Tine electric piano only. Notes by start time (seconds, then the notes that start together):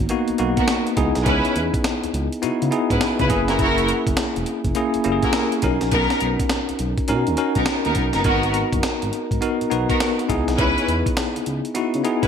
Already playing: A#3 B3 D#4 F#4
0.09 A#3 B3 D#4 F#4
0.39 A#3 B3 D#4 F#4
0.97 B3 D#4 E4 G#4
2.42 B3 D#4 E4 F#4
2.71 B3 D#4 E4 G#4
3.29 A#3 C#4 E4 G#4
4.75 A#3 C#4 E4 G#4
5.04 A#3 C#4 E4 G4
5.12 G#4
5.63 C#4 D#4 F#4 A#4
7.08 C#4 D#4 F#4 A#4
7.37 C#4 D#4 F#4 A#4
8.24 B3 D#4 F#4 A#4
9.41 B3 D#4 F#4 A#4
9.70 B3 D#4 F#4 B4
10.28 B3 D#4 E4 G#4
11.74 B3 D#4 E4 F#4
12.04 B3 D#4 E4 G#4